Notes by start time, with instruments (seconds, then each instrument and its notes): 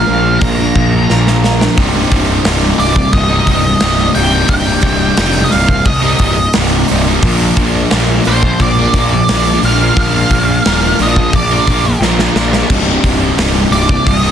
Already playing: steel-string acoustic guitar A#2 F3, distorted electric guitar A#2 F3 A#3, lead electric guitar F5
0.06 picked electric bass A#1, steel-string acoustic guitar A#3 D4 F4 A#4
0.23 muted steel-string acoustic guitar stroke
0.39 picked electric bass A#1, steel-string acoustic guitar A#3 D4 F4 A#4, lead electric guitar A#5, kick, open hi-hat
0.58 steel-string acoustic guitar A#3 D4 F4 A#4
0.76 picked electric bass A#1, kick
0.93 muted steel-string acoustic guitar stroke
1.09 picked electric bass A#1, steel-string acoustic guitar A#2 F3 A#3 D4 F4 A#4, snare
1.27 snare
1.42 steel-string acoustic guitar A#3 D4 F4 A#4, snare
1.59 steel-string acoustic guitar A#3 D4 F4 A#4, snare
1.77 picked electric bass C1, distorted electric guitar C2 G2 C3 G3 D#4, kick, open hi-hat
2.12 picked electric bass C1, kick, open hi-hat
2.45 picked electric bass C1, distorted electric guitar C2 G2 C3 G3 D#4, snare, open hi-hat
2.77 picked electric bass C1, distorted electric guitar G2 C3 G3 D#4, lead electric guitar D5, open hi-hat
2.96 muted distorted electric guitar stroke, kick
3.13 picked electric bass C1, lead electric guitar D#5, kick, open hi-hat
3.29 distorted electric guitar C3 G3 D#4
3.46 picked electric bass C1, distorted electric guitar G2 C3 G3 D#4, kick, open hi-hat
3.65 muted distorted electric guitar stroke
3.80 picked electric bass C1, distorted electric guitar C2 G2 C3 G3 D#4, snare, open hi-hat
4.15 picked electric bass C1, distorted electric guitar G2 C3 G3 D#4, lead electric guitar G5, open hi-hat
4.31 distorted electric guitar C3 G3 D#4
4.48 picked electric bass C1, distorted electric guitar C2 G2 C3 G3 D#4, lead electric guitar G5, kick, open hi-hat
4.81 picked electric bass C1, kick, open hi-hat
5.17 picked electric bass F1, distorted electric guitar C2 G2 C3 G3 D#4, snare, open hi-hat
5.44 lead electric guitar D#5
5.51 picked electric bass C1, distorted electric guitar G2 C3 G3 D#4, lead electric guitar F5, open hi-hat
5.69 muted distorted electric guitar stroke, kick
5.85 picked electric bass C2, lead electric guitar D#5, kick, open hi-hat
6.02 distorted electric guitar C3 G3 D#4
6.19 picked electric bass C1, distorted electric guitar G2 C3 G3 D#4, kick, open hi-hat
6.37 muted distorted electric guitar stroke
6.53 picked electric bass C1, distorted electric guitar C2 G2 C3 G3 D#4, snare, open hi-hat
6.88 picked electric bass C1, distorted electric guitar G2 C3 G3 D#4, open hi-hat
7.07 distorted electric guitar C3 G3 D#4
7.22 picked electric bass A#1, distorted electric guitar A#2 F3 A#3 D4 F4 A#4, kick, open hi-hat
7.56 picked electric bass A#1, kick, open hi-hat
7.91 picked electric bass A#1, distorted electric guitar A#2 F3 A#3 D4 F4 A#4, snare, open hi-hat
8.25 picked electric bass A#1, distorted electric guitar A#3 D4 F4 A#4, lead electric guitar C5, open hi-hat
8.43 muted distorted electric guitar stroke, kick
8.60 picked electric bass A#1, lead electric guitar D5, kick, open hi-hat
8.79 distorted electric guitar A#3 D4 F4 A#4
8.93 picked electric bass A#1, distorted electric guitar A#3, kick, open hi-hat
8.98 distorted electric guitar D4 F4 A#4
9.14 muted distorted electric guitar stroke
9.29 picked electric bass A#1, distorted electric guitar A#2 F3 A#3 D4, snare, open hi-hat
9.33 distorted electric guitar F4 A#4
9.62 picked electric bass A#1, distorted electric guitar A#3 D4 F4 A#4, lead electric guitar F5, open hi-hat
9.81 distorted electric guitar A#3 D4 F4 A#4
9.96 picked electric bass A#1, distorted electric guitar A#2 F3 A#3 D4 F4 A#4, lead electric guitar F5, kick, open hi-hat
10.30 picked electric bass A#1, kick, open hi-hat
10.65 picked electric bass D#1, distorted electric guitar A#2 F3 A#3 D4 F4 A#4, snare, open hi-hat
10.99 picked electric bass A#1, distorted electric guitar A#3 D4 F4 A#4, lead electric guitar D#5, open hi-hat
11.16 muted distorted electric guitar stroke, kick
11.33 picked electric bass A#1, lead electric guitar D5, kick, open hi-hat
11.51 distorted electric guitar A#3 D4 F4 A#4
11.67 picked electric bass A#1, distorted electric guitar A#3 D4 F4 A#4, kick, open hi-hat
11.85 muted distorted electric guitar stroke
12.00 picked electric bass A#1, distorted electric guitar A#2 F3 A#3 D4, snare
12.04 distorted electric guitar F4 A#4
12.19 snare
12.35 picked electric bass A#1, distorted electric guitar A#3 D4 F4 A#4, snare
12.53 distorted electric guitar A#3 D4 F4 A#4, snare
12.69 picked electric bass C1, distorted electric guitar C2 G2 C3 G3 D#4, kick, crash
13.04 picked electric bass C1, kick, open hi-hat
13.37 picked electric bass C1, distorted electric guitar C2 G2 C3 G3 D#4, snare, open hi-hat
13.71 picked electric bass C1, distorted electric guitar G2 C3, lead electric guitar D5, open hi-hat
13.75 distorted electric guitar G3 D#4
13.89 muted distorted electric guitar stroke, kick
14.07 picked electric bass C1, lead electric guitar D#5, kick, open hi-hat
14.23 distorted electric guitar C3 G3 D#4